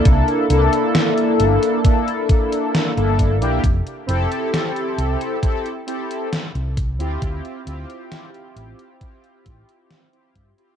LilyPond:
<<
  \new Staff \with { instrumentName = "Analog polysynth" } { \time 4/4 \key f \major \tempo 4 = 67 <bes d' e' a'>8 <bes d' e' a'>4. <bes d' e' a'>4~ <bes d' e' a'>16 <bes d' e' a'>8 <bes d' e' g'>16 | r8 <c' e' g' a'>4. <c' e' g' a'>16 r16 <c' e' g' a'>8 r8. <c' e' f' g'>16~ | <c' e' f' g'>8 <c' e' f' g'>4. <c' e' f' g'>4~ <c' e' f' g'>16 <c' e' f' g'>8 <c' e' f' g'>16 | }
  \new Staff \with { instrumentName = "Fingered electric bass" } { \clef bass \time 4/4 \key f \major c,16 r16 c,16 r8. g,,16 r4. g,,8 bes,,16 | f,,16 r16 f,,16 r8. c,16 r4. c,8 d,16 | d,16 r16 d,16 r8. a,,16 r8. a,,16 r8. g,16 r16 | }
  \new DrumStaff \with { instrumentName = "Drums" } \drummode { \time 4/4 <hh bd>16 hh16 hh16 hh16 <hh sn>16 hh16 hh16 hh16 <hh bd>16 hh16 <hh bd>16 hh16 <hh sn>16 hh16 <hh bd>16 hh16 | <hh bd>16 hh16 hh16 hh16 <hh sn>16 hh16 hh16 hh16 <hh bd>16 hh16 hh16 hh16 <hh sn>16 hh16 <hh bd>16 hh16 | <hh bd>16 hh16 hh16 hh16 <hh sn>16 hh16 hh16 hh16 <hh bd>16 hh16 <hh bd>16 hh16 <hh sn>16 hh16 <hh bd>16 hh16 | }
>>